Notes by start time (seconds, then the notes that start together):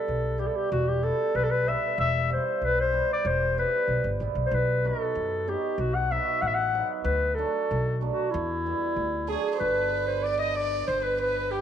Already playing: G3 A4
0.08 B1
0.38 G3 B3 E4 G4
0.47 A4
0.56 G4
0.72 E1 F#4
0.88 G4
1.03 G3 B3 E4 A4
1.35 B1 B4
1.43 A4
1.51 B4
1.68 G3 B3 E4 E5
1.98 E1 E5
2.30 G3 B3 E4 C5
2.62 B1 B4
2.80 C5
2.93 G3 B3 E4
3.13 D5
3.25 E1 C5
3.58 G3 B3 E4 B4
3.88 B1
4.04 G1
4.20 A1 G3 B3 E4
4.35 B1
4.46 C5
4.51 B1 B4
4.84 F#3 B3 D#4 A4
5.15 F#2
5.47 F#3 B3 D#4 G4
5.78 B1 F#4
5.95 F#5
6.11 F#3 B3 D#4 E5
6.42 A1 F#5
6.47 E5
6.54 F#5
6.74 F#3 B3 D#4
7.04 D2 B4
7.34 F#3 A3 A4
7.39 D4
7.71 B1
8.01 F#3 A3 D4
8.10 F#4
8.31 E2 E4
8.66 G3 B3 E4
8.96 D2
9.27 F#3 A3 D4 G#4
9.54 C5
9.59 G1 D3 B3 D4 B4
10.07 C5
10.23 D5
10.39 D#5
10.55 D5
10.87 G1 C5
11.03 B4
11.20 B4
11.51 G4